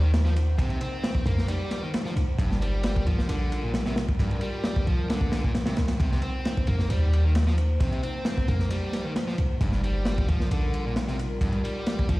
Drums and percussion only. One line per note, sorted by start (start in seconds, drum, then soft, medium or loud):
0.14 snare loud
0.14 ride medium
0.25 snare medium
0.36 ride medium
0.59 kick loud
0.59 ride medium
0.70 ride soft
0.81 ride medium
1.04 snare loud
1.04 ride medium
1.15 kick loud
1.26 kick medium
1.26 ride medium
1.38 snare medium
1.48 ride medium
1.71 snare soft
1.71 ride medium
1.94 snare loud
1.94 ride medium
2.06 snare soft
2.16 ride medium
2.38 kick loud
2.38 ride medium
2.51 snare soft
2.62 ride medium
2.83 snare loud
2.83 ride medium
2.96 kick medium
3.07 kick medium
3.07 ride medium
3.19 snare medium
3.29 ride medium
3.52 ride medium
3.74 snare loud
3.74 ride medium
3.86 snare medium
3.96 snare medium
3.96 ride medium
4.09 kick medium
4.19 kick loud
4.19 ride medium
4.31 ride soft
4.41 ride medium
4.64 snare loud
4.64 ride medium
4.76 kick loud
4.87 ride medium
5.10 snare loud
5.10 ride medium
5.21 kick medium
5.32 snare loud
5.32 ride medium
5.44 kick medium
5.55 snare loud
5.55 ride medium
5.66 snare loud
5.66 ride medium
5.77 snare loud
5.77 ride medium
5.88 snare medium
5.88 ride medium
6.00 kick loud
6.00 ride medium
6.11 snare soft
6.22 ride medium
6.45 snare loud
6.45 ride medium
6.57 kick loud
6.67 kick loud
6.67 ride medium
6.79 snare medium
6.90 ride medium
7.13 ride medium
7.35 snare loud
7.35 ride medium
7.47 snare medium
7.58 ride medium
7.80 kick loud
7.80 ride medium
7.92 ride soft
8.03 ride medium
8.25 snare loud
8.25 ride medium
8.37 kick medium
8.48 kick loud
8.48 ride medium
8.59 snare medium
8.70 ride medium
8.93 snare medium
8.93 ride medium
9.16 snare loud
9.16 ride medium
9.28 snare soft
9.38 ride medium
9.61 kick loud
9.61 ride medium
9.72 snare soft
9.84 ride medium
10.05 snare loud
10.05 ride medium
10.18 kick loud
10.28 kick loud
10.28 ride medium
10.40 snare medium
10.51 ride medium
10.74 ride medium
10.96 snare loud
10.96 ride medium
11.08 snare medium
11.19 ride medium
11.41 kick loud
11.41 ride loud
11.52 ride soft
11.65 ride medium
11.86 snare loud
11.86 ride medium
11.99 kick loud
12.09 kick medium
12.09 ride medium